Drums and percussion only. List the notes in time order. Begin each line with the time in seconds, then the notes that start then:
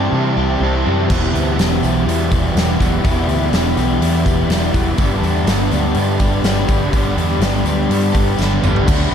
1.10 kick, tambourine, crash
1.35 open hi-hat
1.59 snare, open hi-hat, tambourine
1.83 open hi-hat, tambourine
2.09 open hi-hat
2.32 kick, open hi-hat, tambourine
2.57 snare, open hi-hat, tambourine
2.80 kick, open hi-hat, tambourine
3.05 kick, open hi-hat, tambourine
3.29 open hi-hat
3.53 snare, open hi-hat, tambourine
3.77 open hi-hat, tambourine
4.02 open hi-hat
4.26 kick, open hi-hat, tambourine
4.50 snare, open hi-hat, tambourine
4.74 kick, open hi-hat, tambourine
4.98 kick, open hi-hat, tambourine
5.23 open hi-hat
5.47 snare, open hi-hat, tambourine
5.71 open hi-hat, tambourine
5.94 open hi-hat
6.19 kick, open hi-hat, tambourine
6.44 snare, open hi-hat, tambourine
6.68 kick, open hi-hat, tambourine
6.93 kick, open hi-hat, tambourine
7.18 open hi-hat, tambourine
7.41 snare, open hi-hat, tambourine
7.65 open hi-hat, tambourine
7.91 open hi-hat
8.15 kick, open hi-hat, tambourine
8.38 snare, tambourine
8.64 mid tom, tambourine
8.76 floor tom
8.88 kick, crash, tambourine